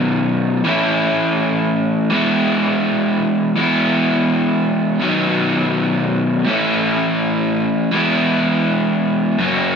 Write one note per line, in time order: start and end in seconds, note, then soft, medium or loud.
0.00 0.61 B2 medium
0.00 0.62 D#3 loud
0.00 0.62 F#3 medium
0.00 0.63 B3 loud
0.00 0.64 D#4 loud
0.64 2.08 A2 medium
0.64 2.10 E3 medium
0.64 2.09 A3 loud
0.64 2.10 C#4 loud
0.68 2.14 E4 loud
2.10 3.54 E3 loud
2.10 3.55 G#3 loud
2.10 3.59 B3 loud
2.15 3.57 E4 loud
3.56 5.00 E3 loud
3.56 5.01 G#3 loud
3.60 5.02 B3 loud
3.60 5.03 E4 loud
5.00 6.45 B2 loud
5.00 6.46 D#3 medium
5.00 6.46 F#3 loud
5.00 6.47 B3 loud
5.04 6.47 D#4 loud
6.46 7.91 A2 medium
6.46 7.91 E3 medium
6.46 7.92 A3 loud
6.46 7.92 C#4 loud
6.51 7.93 E4 loud
7.92 9.36 E3 loud
7.92 9.37 G#3 loud
7.92 9.38 B3 loud
7.96 9.38 E4 loud
9.39 9.76 F#2 loud
9.39 9.76 C#3 loud
9.39 9.76 F#3 loud
9.43 9.76 A#3 loud
9.43 9.76 C#4 loud